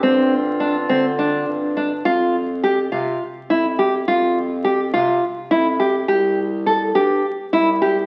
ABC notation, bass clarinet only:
X:1
M:7/8
L:1/8
Q:1/4=104
K:Flyd
V:1 name="Bass clarinet" clef=bass
G,,3 D,2 G,,2 | F,,3 C, z F,,2 | F,,3 C, z F,,2 | C,,3 G,, z C,,2 |]